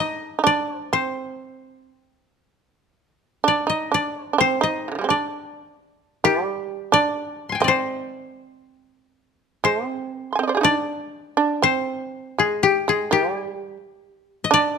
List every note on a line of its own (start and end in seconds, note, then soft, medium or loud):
0.00 0.17 D#4 medium
0.00 0.35 D#4 medium
0.00 0.31 C5 medium
0.00 0.53 D#5 medium
0.39 0.43 D#4 soft
0.44 0.89 D4 medium
0.44 0.75 D5 medium
0.75 0.93 C5 medium
0.93 1.91 C4 medium
0.93 2.65 C5 medium
3.44 3.66 D4 medium
3.44 3.75 D5 medium
3.67 3.90 D#4 medium
3.67 4.00 D#5 medium
3.92 4.30 D4 medium
3.92 4.22 D5 medium
4.22 4.40 C5 medium
4.33 4.38 D4 soft
4.38 4.61 C4 medium
4.38 6.12 C5 medium
4.61 5.04 D#4 medium
4.61 5.16 D#5 medium
4.88 4.91 C3 soft
4.88 4.95 D3 soft
4.95 4.98 D#3 soft
4.95 5.13 G3 soft
5.01 5.16 G#3 soft
5.01 5.08 C4 soft
5.09 5.75 D4 medium
5.09 6.70 D5 medium
6.24 6.90 G3 medium
6.24 7.58 G4 medium
6.92 7.60 D4 medium
6.92 7.64 D5 medium
7.49 8.82 G#5 soft
7.49 8.62 C6 soft
7.55 8.89 G5 soft
7.60 9.59 C4 medium
7.60 9.24 D5 medium
7.60 9.15 D#5 soft
7.68 9.62 C5 medium
9.64 9.87 G#3 medium
9.64 10.30 C5 medium
9.87 10.35 C4 medium
10.30 11.36 G#4 medium
10.30 10.47 C6 soft
10.35 10.57 C4 medium
10.35 10.39 G#5 soft
10.40 10.47 D#5 soft
10.40 10.43 G5 soft
10.48 10.54 C5 soft
10.48 10.61 D5 soft
10.55 10.61 G4 soft
10.55 10.63 G#4 soft
10.61 11.34 D4 medium
10.61 10.75 D#4 soft
10.61 12.24 D5 medium
11.37 11.61 D4 medium
11.62 12.34 C4 medium
11.62 13.35 C5 medium
12.38 12.84 G#3 medium
12.38 12.69 G#4 medium
12.63 12.95 G4 medium
12.88 13.10 G#3 medium
12.88 13.18 G#4 medium
13.11 13.77 G3 medium
13.11 14.78 G4 medium
14.44 14.60 D#5 medium
14.51 14.78 D4 medium
14.51 14.78 D5 loud